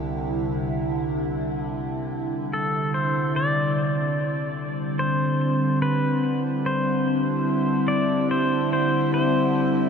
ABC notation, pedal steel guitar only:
X:1
M:4/4
L:1/16
Q:1/4=73
K:C
V:1 name="Pedal steel guitar"
z12 A2 c2 | d8 c4 B3 z | c6 d2 c2 c2 c4 |]